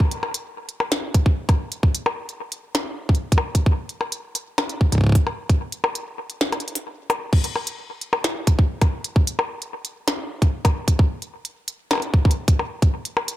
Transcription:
0.00 kick
0.11 closed hi-hat
0.23 percussion blips
0.34 closed hi-hat
0.69 closed hi-hat
0.80 percussion blips
0.92 snare, closed hi-hat
1.14 kick, closed hi-hat
1.26 kick
1.49 kick, closed hi-hat, percussion blips
1.72 closed hi-hat
1.83 kick
1.95 closed hi-hat
2.06 percussion blips
2.29 closed hi-hat
2.52 closed hi-hat
2.75 snare, closed hi-hat, percussion blips
3.09 kick
3.15 closed hi-hat
3.32 kick, closed hi-hat
3.38 percussion blips
3.55 kick, closed hi-hat
3.66 kick
3.89 closed hi-hat
4.01 percussion blips
4.12 closed hi-hat
4.35 closed hi-hat
4.58 snare, percussion blips
4.69 closed hi-hat
4.81 kick
4.92 kick, closed hi-hat
4.95 kick
4.98 kick
5.01 kick
5.04 kick
5.06 kick
5.09 kick
5.12 kick
5.15 kick, closed hi-hat
5.27 percussion blips
5.49 kick, closed hi-hat
5.72 closed hi-hat
5.84 percussion blips
5.95 closed hi-hat
6.30 closed hi-hat
6.41 snare
6.52 closed hi-hat, percussion blips
6.60 closed hi-hat
6.68 closed hi-hat
6.75 closed hi-hat
7.10 closed hi-hat, percussion blips
7.33 kick, crash
7.44 closed hi-hat
7.56 percussion blips
7.67 closed hi-hat
8.01 closed hi-hat
8.13 percussion blips
8.24 snare, closed hi-hat
8.47 kick, closed hi-hat
8.59 kick
8.81 kick, closed hi-hat, percussion blips
9.04 closed hi-hat
9.16 kick
9.27 closed hi-hat
9.39 percussion blips
9.62 closed hi-hat
9.85 closed hi-hat
10.08 snare, closed hi-hat, percussion blips
10.42 kick, closed hi-hat
10.65 kick, closed hi-hat, percussion blips
10.88 kick, closed hi-hat
10.99 kick
11.22 closed hi-hat
11.45 closed hi-hat
11.68 closed hi-hat
11.91 snare, percussion blips
11.93 percussion blips
11.95 percussion blips
11.98 percussion blips
12.00 closed hi-hat, percussion blips
12.14 kick
12.25 kick
12.31 closed hi-hat
12.48 kick, closed hi-hat
12.59 percussion blips
12.82 kick, closed hi-hat
13.05 closed hi-hat
13.17 percussion blips
13.28 closed hi-hat

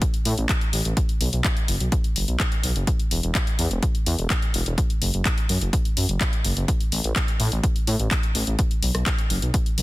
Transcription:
0.02 kick, closed hi-hat
0.14 closed hi-hat
0.25 A2, open hi-hat
0.38 A1, closed hi-hat
0.49 kick, clap, closed hi-hat
0.61 closed hi-hat
0.73 A1, open hi-hat
0.85 A1, closed hi-hat
0.97 kick, closed hi-hat
1.09 closed hi-hat
1.21 B1, open hi-hat
1.33 B1, closed hi-hat
1.44 kick, clap, closed hi-hat
1.57 closed hi-hat
1.68 F#1, open hi-hat
1.80 B1, closed hi-hat
1.92 kick, closed hi-hat
2.04 closed hi-hat
2.16 F#1, open hi-hat
2.28 B1, closed hi-hat
2.40 kick, clap, closed hi-hat
2.52 closed hi-hat
2.63 B1, open hi-hat
2.76 F#1, closed hi-hat
2.87 kick, closed hi-hat
3.00 closed hi-hat
3.11 E1, open hi-hat
3.23 E1, closed hi-hat
3.35 kick, clap, closed hi-hat
3.47 closed hi-hat
3.59 E2, open hi-hat
3.71 E1, closed hi-hat
3.83 kick, closed hi-hat
3.95 closed hi-hat
4.06 E2, open hi-hat
4.19 E1, closed hi-hat
4.30 kick, clap, closed hi-hat
4.42 closed hi-hat
4.54 E1, open hi-hat
4.66 E1, closed hi-hat
4.78 kick, closed hi-hat
4.90 closed hi-hat
5.02 F#1, open hi-hat
5.14 F#1, closed hi-hat
5.25 kick, clap, closed hi-hat
5.38 closed hi-hat
5.49 F#2, open hi-hat
5.61 F#1, closed hi-hat
5.73 kick, closed hi-hat
5.85 closed hi-hat
5.97 F#2, open hi-hat
6.09 F#1, closed hi-hat
6.21 kick, clap, closed hi-hat
6.33 closed hi-hat
6.45 F#1, open hi-hat
6.57 F#1, closed hi-hat
6.68 kick, closed hi-hat
6.80 closed hi-hat
6.92 A1, open hi-hat
7.04 A1, closed hi-hat
7.16 kick, clap, closed hi-hat
7.28 closed hi-hat
7.40 A2, open hi-hat
7.52 A1, closed hi-hat
7.63 kick, closed hi-hat
7.76 closed hi-hat
7.87 A2, open hi-hat
7.99 A1, closed hi-hat
8.11 kick, clap, closed hi-hat
8.23 closed hi-hat
8.35 A1, open hi-hat
8.47 A1, closed hi-hat
8.59 kick, closed hi-hat
8.71 closed hi-hat
8.82 B1, open hi-hat
8.95 B1, cross-stick, closed hi-hat
9.06 kick, clap, closed hi-hat
9.19 closed hi-hat
9.30 F#1, open hi-hat
9.42 B1, closed hi-hat
9.54 kick, closed hi-hat
9.66 closed hi-hat
9.78 B1, open hi-hat

